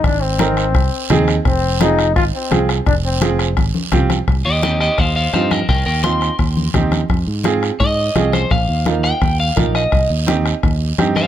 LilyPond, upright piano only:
\new Staff \with { instrumentName = "Upright piano" } { \time 4/4 \key c \minor \tempo 4 = 170 r4 <c' ees' bes'>8 r4. <c' ees' aes'>8 r8 | r4 <c' f' aes'>8 r4. <c' f' aes'>8 r8 | r4 <c' f' aes'>8 r4. <c' f' g'>8 r8 | r4 <c' ees' g'>8 r4. <c' ees' f'>8 r8 |
r4 <c' ees' f'>8 r4. <c' ees' g'>8 r8 | r4 <c' f' aes'>8 r4. <c' f' aes'>8 r8 | r4 <bes ees' f'>8 r4. <bes ees' f'>8 r8 | r4 <c' ees' g'>8 r4. <c' ees' g'>8 r8 | }